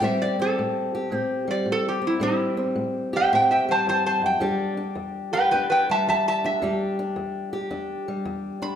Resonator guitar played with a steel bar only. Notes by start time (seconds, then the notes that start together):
0.04 E5
0.22 D5
0.42 A4
1.15 G4
1.51 D5
1.72 A4
1.89 G4
2.07 E4
2.23 E4
3.16 E5 G5
3.33 E5 G5
3.51 E5 G5
3.71 C5 A5
3.89 C5 A5
4.06 C5 A5
4.26 G5
5.33 B4 G5
5.51 B4 G5
5.70 B4 G5
5.91 E5 A5
6.09 E5 A5
6.28 E5 A5
6.46 E5
8.62 B5